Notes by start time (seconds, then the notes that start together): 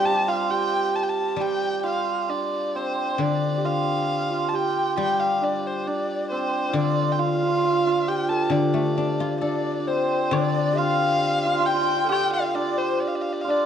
Already playing: G3 C4 D4 F4
0.05 G4 A5
0.14 G4
0.28 F4 F5
0.50 G4 G5
0.95 A5
1.03 G5
1.09 A5
1.36 G3 G4
1.41 G5
1.84 F4 F5
2.29 D4 D5
2.75 C4 C5
3.18 D3 D4 D5
3.58 G4
3.65 F4 F5
4.30 F4
4.49 A5
4.53 G4 G5
4.97 G3 G4 G5
5.20 F5
5.41 D4 D5
5.67 C5
5.87 D4 D5
6.31 C4 C5
6.70 D3 F4
6.75 D4 D5
7.12 G5
7.19 F4 F5
7.26 F4
7.35 F4
7.42 F4
7.48 F4
7.57 F4
7.64 F4
7.72 F4
7.87 F4
8.08 G4 G5
8.29 A4 A5
8.50 D3 D4 D5
8.74 A3
8.98 D4
9.20 F4
9.41 D4 A4 D5
9.80 D4
9.87 C4 C5
10.31 D3 D4 D5, high woodblock
10.73 G4 F5
10.78 F4 F5
11.43 F4 F5
11.54 F4
11.60 F4
11.65 F4 G5
11.74 F4
11.81 F4
11.89 F4
11.96 F4
12.04 A4
12.09 G4 G5, high woodblock
12.33 F5
12.39 D5
12.45 F5
12.55 D4 D5
12.77 C5
13.00 D5
13.08 F5
13.15 D5
13.22 F5
13.33 D5
13.41 F4 F5
13.48 D4 D5